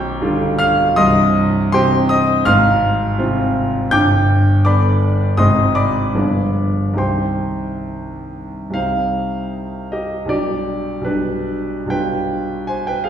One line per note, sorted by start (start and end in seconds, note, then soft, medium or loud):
0.00 0.93 B0 medium
0.00 0.92 B1 medium
0.00 0.54 G5 loud
0.00 0.54 D6 medium
0.00 0.58 G6 loud
0.22 0.93 D3 medium
0.22 0.93 G3 medium
0.22 0.93 F4 medium
0.59 0.94 F5 medium
0.59 0.96 F6 loud
0.96 2.42 C1 medium
0.96 2.42 C2 medium
0.96 1.69 D#5 medium
0.96 1.68 C6 medium
0.96 1.72 D#6 loud
1.72 2.43 C3 medium
1.72 2.43 C4 medium
1.72 2.43 G4 medium
1.72 2.08 C5 medium
1.72 2.08 G5 medium
1.72 2.09 C6 loud
2.09 2.44 D#5 medium
2.09 2.46 D#6 loud
2.45 3.89 G#1 medium
2.45 3.89 G#2 medium
2.45 3.89 F5 loud
2.45 3.89 C6 medium
2.45 3.93 F6 loud
3.19 3.89 C3 medium
3.19 3.89 C4 medium
3.19 3.89 F4 medium
3.91 5.33 G1 medium
3.91 5.33 G2 medium
3.91 4.61 G5 medium
3.91 4.61 D6 medium
3.91 4.64 G6 loud
4.65 5.34 D3 medium
4.65 5.33 B3 medium
4.65 5.34 D4 medium
4.65 4.99 D5 medium
4.65 4.98 B5 medium
4.65 5.00 D6 medium
5.37 6.13 G#1 medium
5.37 6.13 G#2 medium
5.37 6.11 C3 medium
5.37 6.11 C4 soft
5.37 6.12 G#4 soft
5.37 5.74 D#5 medium
5.37 5.74 C6 medium
5.37 5.76 D#6 loud
5.75 6.94 D5 medium
5.75 6.94 B5 medium
5.75 6.98 D6 medium
6.15 6.95 G1 medium
6.15 6.95 G2 medium
6.15 6.94 F3 soft
6.15 6.94 B3 soft
6.15 6.95 G#4 soft
6.93 8.68 C2 medium
6.93 8.69 D#3 soft
6.93 8.70 C4 soft
6.93 8.70 G4 soft
6.98 8.29 C5 medium
6.98 8.29 G5 medium
6.98 8.33 C6 medium
8.70 10.24 C2 soft
8.70 10.25 G3 soft
8.70 10.25 C4 soft
8.70 10.26 D#4 soft
8.70 9.92 F5 medium
8.75 9.88 C5 medium
9.92 10.28 G4 soft
9.92 10.30 D#5 medium
10.25 11.00 B1 soft
10.25 11.01 G3 soft
10.25 11.02 D4 soft
10.25 11.05 D5 medium
10.30 11.02 G4 medium
11.01 11.84 B1 soft
11.01 11.86 G3 soft
11.01 11.89 B4 medium
11.06 11.87 D4 medium
11.86 13.09 B1 soft
11.86 13.09 G3 soft
11.86 13.09 D4 soft
11.86 13.09 F4 soft
11.90 12.64 B4 medium
11.90 12.68 G5 medium
12.67 12.86 C5 medium
12.67 12.86 G#5 medium
12.87 13.04 B4 medium
12.87 13.05 G5 medium
13.04 13.09 G#4 medium
13.04 13.09 F5 medium